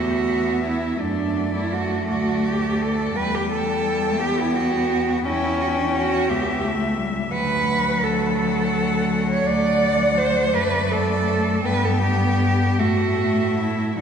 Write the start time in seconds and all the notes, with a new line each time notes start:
Already playing: E2 B3 F#4 E5
0.64 E4
1.00 F#2 A3 D4 D5
1.55 E4
1.72 F#4
2.09 D2 F#4 D5
2.45 G4
2.81 A4
3.16 E2 G3 B4 G5
3.34 G4
3.50 A4
4.19 B3 G4
4.40 E4
4.55 F#4
5.25 E2 C#4 E4 G5
5.61 F#4
5.69 E4
5.77 D4
5.88 E4
5.95 F#4
6.29 C#2 B3 G4 E5
6.63 A3
6.98 G3
7.31 D2 F#3 B4 F#5
8.03 A4
8.40 F#5
9.30 C#5
9.46 D2 D5 F#5
10.18 C5
10.54 F#2 A3 B4 D5
10.91 A4
11.64 G2 B3 B4 G5
11.84 A4
12.02 G4
12.79 A2 A3 F#4 E5
13.58 E4